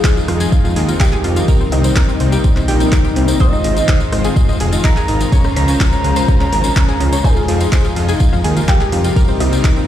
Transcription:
Already playing: D#3 F3 G#3 C4 D#4 F4 G#4 G#5
0.04 C5, kick, clap, closed hi-hat, tambourine
0.17 F4, tambourine
0.28 F2 F4, cross-stick, open hi-hat
0.40 G#4, closed hi-hat, tambourine
0.52 F4, kick, closed hi-hat, tambourine
0.64 F2 F4, tambourine
0.76 D#2 F3 G#3 D#4 G#4 A#4, open hi-hat
0.89 F4, closed hi-hat, tambourine
1.00 F4 G4 G5, kick, clap, closed hi-hat, tambourine
1.12 G#4, clap, tambourine
1.24 F2 F4, open hi-hat
1.36 F4, closed hi-hat, tambourine
1.48 C3 G3 A#3 C4 D#4 A#4, kick, closed hi-hat, tambourine
1.61 C4, tambourine
1.72 C2 C4 D#4 D#5, open hi-hat
1.84 C4, closed hi-hat, tambourine
1.96 A#4, kick, clap, closed hi-hat, tambourine
2.08 C4, tambourine
2.20 C2 C4, open hi-hat
2.32 G4, closed hi-hat, tambourine
2.44 C4, kick, closed hi-hat, tambourine
2.56 C2 C4, clap, tambourine
2.68 A#1 C3 G3 C4 D#4 G4 A#4, open hi-hat
2.80 C4, closed hi-hat, tambourine
2.92 C4, kick, clap, closed hi-hat, tambourine
3.05 G4, tambourine
3.16 C2 C4, open hi-hat
3.28 C4, closed hi-hat, tambourine
3.40 G#2 F3 G#3 C4 D#4 F4 C5 D#5 D#6, kick, closed hi-hat, tambourine
3.53 D#4, tambourine
3.64 G#1 D#4, open hi-hat
3.77 D#4, closed hi-hat, tambourine
3.88 C5, kick, clap, closed hi-hat, tambourine
4.00 D#4, tambourine
4.12 G#1 D#4, cross-stick, open hi-hat
4.24 G#4, closed hi-hat, tambourine
4.36 D#4, kick, closed hi-hat, tambourine
4.49 G#1 D#4, tambourine
4.60 F1 G#2 G#3 D#4 F4 G#4 F5, open hi-hat
4.73 D#4, closed hi-hat, tambourine
4.84 D#4 A#5 A#6, kick, clap, closed hi-hat
4.97 G#4, clap, tambourine
5.08 G#1 D#4, open hi-hat
5.21 D#4, closed hi-hat, tambourine
5.32 C#3 G#3 C#4 F4 C5 C#5, kick, closed hi-hat, tambourine
5.44 C#4, cross-stick, tambourine
5.56 C#2 C#4 A#5 A#6, open hi-hat
5.68 C#4, closed hi-hat, tambourine
5.80 C#5, kick, clap, closed hi-hat, tambourine
5.93 C#4, tambourine
6.04 C#2 C#4, open hi-hat
6.16 C5, closed hi-hat, tambourine
6.28 C#4, kick, closed hi-hat, tambourine
6.40 C#2 C#4, clap, tambourine
6.52 G#1 A#4, open hi-hat
6.64 C#4, closed hi-hat, tambourine
6.76 C#3 G#3 C#4 F4 C5, kick, clap, closed hi-hat, tambourine
6.88 G#4, tambourine
7.00 C#2 C#4, open hi-hat
7.13 C#4, closed hi-hat, tambourine
7.24 C3 F3 G#3 D#4 F4 G#4 C5 G#5, kick, closed hi-hat, tambourine
7.37 F4, tambourine
7.48 F2 F4, open hi-hat
7.61 F4, closed hi-hat, tambourine
7.72 C5, kick, clap, closed hi-hat, tambourine
7.85 F4, tambourine
7.96 F2 F4, open hi-hat
8.09 G#4, closed hi-hat, tambourine
8.20 F4, kick, closed hi-hat, tambourine
8.33 F2 F4, tambourine
8.44 D#2 F3 G#3 D#4 G#4 A#4, open hi-hat
8.57 F4, closed hi-hat, tambourine
8.68 F4 G4 G5, kick, clap, closed hi-hat, tambourine
8.80 G#4, clap, tambourine
8.92 F2 F4, open hi-hat
9.04 F4, closed hi-hat, tambourine
9.16 C3 G3 A#3 C4 D#4 A#4, kick, closed hi-hat, tambourine
9.28 C4, tambourine
9.40 C2 C4 D#4 D#5, open hi-hat
9.52 C4, closed hi-hat, tambourine
9.64 A#4, kick, clap, closed hi-hat, tambourine
9.76 C4, tambourine

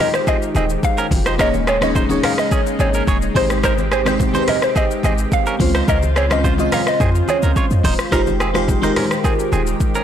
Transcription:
Already playing: D#3 G#3 D#4 F4 G4 C5
0.00 C#4 D#5
0.14 C5, cross-stick, shaker
0.27 C4 G#4 D#5, kick, shaker
0.42 shaker
0.55 D#1 C4 G#4 D#5, high conga, shaker
0.70 shaker
0.83 F5, kick, shaker
0.98 C#4 A#4, shaker
1.11 F1, kick, open hi-hat, high conga, low conga, shaker
1.26 D#4 C5, cross-stick, shaker
1.38 D#1 C#3 A#3 C#4 D#4 G#4 A#4 C#5 D#5, kick, cross-stick, shaker
1.54 high conga, shaker
1.67 C4 G#4 C#5, cross-stick, shaker
1.81 A#3 C#4 D#4 G#4 C#5 D#5, cross-stick, high conga, shaker
1.95 D#4 C5, kick, low conga, shaker
2.09 A#3 C#4 D#4 G#4 C#5, high conga, shaker
2.23 C#4 A#4 F5, cross-stick, open hi-hat, high conga, low conga
2.38 D#5, cross-stick, shaker
2.51 C#4 G#4, kick, shaker
2.66 shaker
2.79 G#1 C4 G#4 C#5, high conga, shaker
2.94 C#4 A#4, shaker
3.08 D#1 G#4 C#5, kick, shaker
3.22 shaker
3.34 G#1 C3 G#3 C4 D#4 G4 C5, kick, open hi-hat, high conga, low conga, shaker
3.50 cross-stick, shaker
3.64 D#4 A#4 C5, kick, cross-stick, shaker
3.78 high conga, shaker
3.92 C4 G#4 C5, cross-stick, shaker
4.05 G#3 C4 D#4 G4 C5, cross-stick, high conga, shaker
4.19 kick, low conga, shaker
4.33 G#3 C4 D#4 G4 B4 C5, high conga, shaker
4.42 C5
4.48 C#4 A#4 D#5, cross-stick, open hi-hat, high conga, low conga
4.62 C5, cross-stick, shaker
4.76 C4 G#4 D#5, kick, shaker
4.91 shaker
5.03 G#1 C4 G#4 D#5, high conga, shaker
5.18 shaker
5.32 F5, kick, shaker
5.46 C#4 A#4, shaker
5.59 C#2 C#3 G#3 C4 C#4 F4 C5, kick, open hi-hat, high conga, low conga, shaker
5.75 D#4 C5, cross-stick, shaker
5.88 C#2 C#4 A#4 D#5, kick, shaker
6.03 high conga, shaker
6.16 C4 G#4 C#5, cross-stick, shaker
6.29 G#3 C4 C#4 F4 C5 D#5, cross-stick, high conga, shaker
6.44 F4 C5, kick, low conga, shaker
6.57 G#3 C4 C#4 F4 D#5, high conga, shaker
6.72 C#4 A#4 F5, cross-stick, open hi-hat, high conga, low conga, shaker
6.87 D#5, cross-stick, shaker
7.00 F2 C4 G#4, kick, shaker
7.15 shaker
7.28 C4 G#4 C#5, high conga, shaker
7.42 C#2 C#4 A#4, shaker
7.56 F4 C#5, kick, shaker
7.71 F2, shaker
7.84 D#1 D#4 C5, kick, open hi-hat, high conga, low conga, shaker
7.99 cross-stick, shaker
8.11 F1 D#3 G#3 D#4 F4 G4 A#4 C5, kick, cross-stick, shaker
8.27 high conga, shaker
8.40 C4 G#4, cross-stick, shaker
8.54 G#3 D#4 F4 G4 C5, cross-stick, high conga, shaker
8.68 kick, low conga, shaker
8.82 G#3 D#4 F4 G4 A#4 C5, high conga, shaker
8.96 C#4 A#4, cross-stick, open hi-hat, high conga, low conga
9.11 cross-stick, shaker
9.24 C4 G#4, kick, shaker
9.39 shaker
9.52 D#1 C4 G#4, high conga, shaker
9.67 shaker
9.80 kick, shaker
9.95 C#4 A#4, shaker

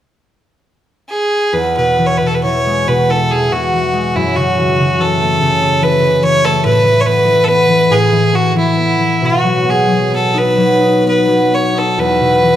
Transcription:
1.09 G#4
1.53 E2 B4
1.77 B2 B4
1.98 E3
2.06 C#5
2.17 B4
2.21 B2
2.26 A4
2.34 B4
2.43 E3 C#5
2.66 G#3
2.87 B2 B4
3.09 E4 A4
3.31 E3 G#4
3.52 B2 F#4
3.73 E3
3.93 G#3
4.15 F#2 E4
4.36 C#3 F#4
4.58 E3
4.79 C#3
5.00 E3 A4
5.20 A3
5.41 C#3
5.62 C#4
5.81 E3 B4
6.02 C#3
6.22 E3 C#5
6.44 A3 A4
6.64 A2 B4
6.84 E3
7.00 C#5
7.05 B3 B4
7.25 E3
7.44 B3 A4 B4
7.69 E3
7.90 A2 G#4
8.12 E3
8.33 B3 F#4
8.55 E3 E4
8.77 B3
8.99 E3
9.22 B2 F#4
9.43 F#3
9.65 B3
9.70 G#4
9.88 F#3
10.11 B3
10.15 A4
10.34 D#4 B4
10.57 F#3
10.81 D#4
11.05 B3 B4
11.28 F#3
11.52 B3 C#5
11.74 D#4 A4
11.98 E2 B4
12.20 B2
12.43 E3

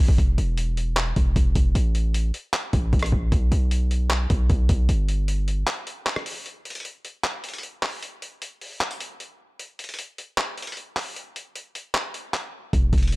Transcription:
0.08 G1, kick
0.18 E1, kick, closed hi-hat
0.38 E1, closed hi-hat
0.58 closed hi-hat
0.77 closed hi-hat
0.97 clap, closed hi-hat
1.16 E1, kick, closed hi-hat
1.36 E1, kick, closed hi-hat
1.55 E1, kick, closed hi-hat
1.75 A1, closed hi-hat
1.95 closed hi-hat
2.14 closed hi-hat
2.34 closed hi-hat
2.53 clap, closed hi-hat
2.73 A1, kick, closed hi-hat
2.93 A1, kick, closed hi-hat
2.99 cross-stick, closed hi-hat
3.06 closed hi-hat
3.12 A1, kick
3.32 B1, kick, closed hi-hat
3.52 B1, closed hi-hat
3.71 closed hi-hat
3.91 closed hi-hat
4.10 clap, closed hi-hat
4.30 B1, kick, closed hi-hat
4.50 B1, kick, closed hi-hat
4.69 B1, kick, closed hi-hat
4.89 G1, closed hi-hat
5.09 closed hi-hat
5.28 closed hi-hat
5.48 closed hi-hat
5.67 clap, closed hi-hat
5.87 closed hi-hat
6.06 clap, closed hi-hat
6.16 cross-stick
6.26 open hi-hat
6.46 closed hi-hat
6.65 closed hi-hat
6.70 closed hi-hat
6.75 closed hi-hat
6.80 closed hi-hat
6.85 closed hi-hat
7.05 closed hi-hat
7.24 clap, closed hi-hat
7.44 closed hi-hat
7.49 closed hi-hat
7.54 closed hi-hat
7.58 closed hi-hat
7.63 closed hi-hat
7.83 clap, open hi-hat
8.03 closed hi-hat
8.22 closed hi-hat
8.42 closed hi-hat
8.61 open hi-hat
8.81 clap, closed hi-hat
8.91 closed hi-hat
9.00 closed hi-hat
9.20 closed hi-hat
9.59 closed hi-hat
9.79 closed hi-hat
9.84 closed hi-hat
9.89 closed hi-hat
9.94 closed hi-hat
9.99 closed hi-hat
10.18 closed hi-hat
10.38 clap, closed hi-hat
10.58 closed hi-hat
10.62 closed hi-hat
10.67 closed hi-hat
10.72 closed hi-hat
10.77 closed hi-hat
10.97 clap, open hi-hat
11.16 closed hi-hat
11.36 closed hi-hat
11.56 closed hi-hat
11.75 closed hi-hat
11.95 clap, closed hi-hat
12.14 closed hi-hat
12.34 clap, closed hi-hat
12.73 E1, kick, closed hi-hat
12.93 E1, kick, closed hi-hat
12.98 closed hi-hat
13.03 closed hi-hat
13.08 closed hi-hat
13.12 closed hi-hat

